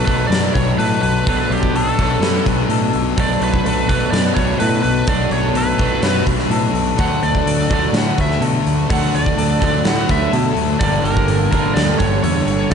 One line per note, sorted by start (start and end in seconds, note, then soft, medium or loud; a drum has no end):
0.00 0.33 A4 medium
0.05 0.25 B1 medium
0.05 1.28 F#3 medium
0.05 1.28 A3 medium
0.05 1.27 B3 medium
0.05 1.29 D4 medium
0.05 1.30 A4 medium
0.05 0.27 B4 medium
0.05 kick medium
0.05 open hi-hat soft
0.10 1.27 B2 medium
0.28 0.48 F#2 medium
0.28 0.78 B4 medium
0.28 0.54 D5 medium
0.32 snare medium
0.32 open hi-hat medium
0.54 0.73 B1 medium
0.54 0.78 C#5 medium
0.54 kick medium
0.54 open hi-hat soft
0.78 0.96 A2 medium
0.78 1.27 A4 medium
0.78 1.01 B4 medium
0.78 open hi-hat medium
1.02 1.21 B1 medium
1.02 1.27 B4 medium
1.02 open hi-hat soft
1.26 1.44 B1 medium
1.26 2.02 B2 medium
1.26 2.01 F#3 medium
1.26 2.00 A3 medium
1.26 1.97 B3 medium
1.26 1.99 D4 medium
1.26 1.76 A4 medium
1.26 1.53 B4 medium
1.26 kick loud
1.26 open hi-hat medium
1.30 1.98 A4 medium
1.50 1.68 B1 medium
1.50 1.76 G4 medium
1.50 open hi-hat soft
1.63 kick medium
1.73 1.92 B1 medium
1.73 2.23 A4 medium
1.73 2.43 A4 medium
1.73 open hi-hat medium
1.97 2.16 B1 medium
1.97 3.18 F#3 medium
1.97 3.19 A3 medium
1.97 3.20 B3 medium
1.97 3.20 D4 medium
1.97 3.20 A4 medium
1.97 kick medium
1.97 open hi-hat soft
2.02 3.16 B2 medium
2.20 2.39 F#2 medium
2.20 2.70 B4 medium
2.20 snare loud
2.20 open hi-hat medium
2.46 2.64 B1 medium
2.46 kick medium
2.46 open hi-hat soft
2.69 2.87 A2 medium
2.69 3.18 A4 medium
2.69 open hi-hat medium
2.93 3.12 B1 medium
2.93 open hi-hat soft
3.17 3.36 B1 medium
3.17 3.92 B2 medium
3.17 3.91 F#3 medium
3.17 3.90 A3 medium
3.17 3.88 B3 medium
3.17 3.90 D4 medium
3.17 3.65 A4 medium
3.17 3.88 A4 medium
3.17 3.43 D5 loud
3.17 kick loud
3.17 open hi-hat medium
3.40 3.59 B1 medium
3.40 3.88 B4 medium
3.40 open hi-hat soft
3.54 kick medium
3.65 3.83 B1 medium
3.65 4.15 A4 medium
3.65 open hi-hat medium
3.89 4.07 B1 medium
3.89 5.06 B2 medium
3.89 5.08 F#3 medium
3.89 5.08 A3 medium
3.89 5.07 B3 medium
3.89 5.09 D4 medium
3.89 5.10 A4 medium
3.89 4.11 B4 medium
3.89 kick medium
3.89 open hi-hat soft
4.11 4.30 F#2 medium
4.11 4.59 B4 medium
4.11 4.34 D5 medium
4.11 snare loud
4.11 open hi-hat medium
4.35 4.54 B1 medium
4.35 4.58 C#5 medium
4.35 kick medium
4.35 open hi-hat soft
4.59 4.79 A2 medium
4.59 5.08 A4 medium
4.59 4.81 B4 medium
4.59 open hi-hat medium
4.83 5.02 B1 medium
4.83 5.08 B4 medium
4.83 open hi-hat soft
5.07 5.26 B1 medium
5.07 5.78 B2 medium
5.07 5.80 F#3 medium
5.07 5.79 A3 medium
5.07 5.77 B3 medium
5.07 5.79 D4 medium
5.07 5.56 A4 medium
5.07 5.78 A4 medium
5.07 5.32 D5 medium
5.07 kick loud
5.07 open hi-hat medium
5.31 5.49 B1 medium
5.31 5.57 C#5 medium
5.31 open hi-hat soft
5.54 5.73 B1 medium
5.54 6.03 A4 medium
5.54 6.24 B4 medium
5.54 open hi-hat medium
5.78 5.97 B1 medium
5.78 6.97 B2 medium
5.78 6.98 F#3 medium
5.78 6.99 A3 medium
5.78 6.97 B3 medium
5.78 9.29 D4 medium
5.78 7.01 A4 medium
5.78 kick medium
5.78 open hi-hat soft
6.02 6.21 F#2 medium
6.02 6.51 B4 medium
6.02 snare medium
6.02 open hi-hat medium
6.26 6.45 B1 medium
6.26 kick medium
6.26 open hi-hat soft
6.39 snare soft
6.50 6.68 A2 medium
6.50 6.99 A4 medium
6.50 open hi-hat medium
6.73 6.92 B1 medium
6.73 open hi-hat soft
6.97 7.17 D2 medium
6.97 7.74 D3 medium
6.97 7.73 F#3 medium
6.97 7.72 A3 medium
6.97 7.70 D4 medium
6.97 7.47 A4 medium
6.97 7.24 F#5 loud
6.97 kick loud
6.97 open hi-hat medium
7.01 7.70 A4 medium
7.23 7.41 D2 medium
7.23 7.72 D5 medium
7.23 open hi-hat soft
7.35 kick medium
7.46 7.64 D2 medium
7.46 7.97 A4 medium
7.46 open hi-hat medium
7.70 7.88 D2 medium
7.70 8.90 F#3 medium
7.70 8.92 A3 medium
7.70 8.91 D4 medium
7.70 8.93 A4 medium
7.70 kick medium
7.70 open hi-hat soft
7.74 8.88 D3 medium
7.74 7.95 D5 medium
7.93 8.11 A2 medium
7.93 8.41 B4 medium
7.93 snare medium
7.93 open hi-hat medium
7.98 8.20 F#5 medium
8.18 8.36 D2 medium
8.18 8.42 E5 medium
8.18 kick medium
8.18 open hi-hat soft
8.31 snare soft
8.41 8.59 B2 medium
8.41 8.89 A4 medium
8.41 open hi-hat medium
8.66 8.84 D2 medium
8.66 open hi-hat soft
8.89 9.08 D2 medium
8.89 9.60 D3 medium
8.89 9.61 F#3 medium
8.89 9.62 A3 medium
8.89 9.59 D4 medium
8.89 9.37 A4 medium
8.89 9.15 F#5 loud
8.89 kick loud
8.89 open hi-hat medium
8.93 9.60 A4 medium
9.14 9.32 D2 medium
9.14 9.63 D5 medium
9.14 open hi-hat soft
9.26 kick medium
9.37 9.56 D2 medium
9.37 9.85 A4 medium
9.37 open hi-hat medium
9.60 9.80 D2 medium
9.60 10.80 F#3 medium
9.60 10.83 A3 medium
9.60 12.74 D4 medium
9.60 10.84 A4 medium
9.60 kick medium
9.60 open hi-hat soft
9.64 10.81 D3 medium
9.64 9.88 D5 medium
9.85 10.04 A2 medium
9.85 10.32 B4 medium
9.85 10.11 F#5 medium
9.85 snare loud
9.85 open hi-hat medium
10.09 10.27 D2 medium
10.09 10.33 E5 medium
10.09 kick medium
10.09 open hi-hat soft
10.33 10.51 B2 medium
10.33 10.81 A4 medium
10.33 open hi-hat medium
10.56 10.74 D2 medium
10.56 open hi-hat soft
10.80 10.98 G1 medium
10.80 11.56 G2 medium
10.80 11.51 D3 medium
10.80 11.55 G3 medium
10.80 11.54 A#3 medium
10.80 11.28 A4 medium
10.80 11.05 D5 loud
10.80 kick loud
10.80 open hi-hat medium
10.84 11.53 D4 medium
10.84 11.53 A4 medium
11.04 11.22 G1 medium
11.04 11.51 A#4 medium
11.04 open hi-hat soft
11.17 kick medium
11.28 11.46 G1 medium
11.28 12.24 A4 medium
11.28 open hi-hat medium
11.52 11.70 G1 medium
11.52 12.71 D3 medium
11.52 12.72 G3 medium
11.52 12.71 A#3 medium
11.52 12.74 D4 medium
11.52 12.74 A4 medium
11.52 11.77 A#4 medium
11.52 kick medium
11.52 open hi-hat soft
11.56 12.70 G2 medium
11.74 11.94 D2 medium
11.74 11.97 D5 medium
11.74 snare loud
11.74 open hi-hat medium
11.99 12.18 G1 medium
11.99 12.23 C#5 medium
11.99 kick medium
11.99 open hi-hat soft
12.24 12.42 E2 medium
12.24 12.74 A4 medium
12.24 12.71 C#5 medium
12.24 open hi-hat medium
12.46 12.65 G1 medium
12.46 open hi-hat soft
12.70 12.74 G1 medium
12.70 12.74 G2 medium